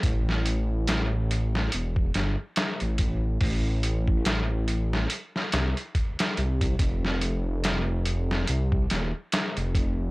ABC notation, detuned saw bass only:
X:1
M:4/4
L:1/16
Q:"Swing 16ths" 1/4=71
K:Am
V:1 name="Detuned saw bass" clef=bass
A,,,8 E,,,2 G,,, z2 A,,,3 | A,,,8 z2 C,, z3 C,,2 | F,,,8 C,,2 _E,,, z2 F,,,3 |]